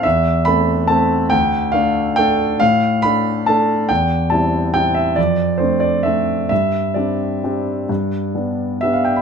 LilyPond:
\new Staff \with { instrumentName = "Grand piano" } { \time 3/4 \key d \dorian \tempo 4 = 137 << { e''4 b''4 a''4 | g''4 f''4 g''4 | f''4 b''4 a''4 | g''4 a''4 g''8 e''8 |
d''4 c''8 d''8 e''4 | e''4 d''2~ | d''2 e''16 f''16 g''16 b''16 | } \\ { e,4 <a c' a'>4 <a c' a'>4 | d,4 <a d' a'>4 <a d' a'>4 | a,4 <a d' a'>4 <a d' a'>4 | e,4 <g c' e'>4 <g c' e'>4 |
f,4 <a c' d'>4 <a c' d'>4 | g,4 <g c' d'>4 <g c' d'>4 | g,4 <g b d'>4 <g b d'>4 | } >> }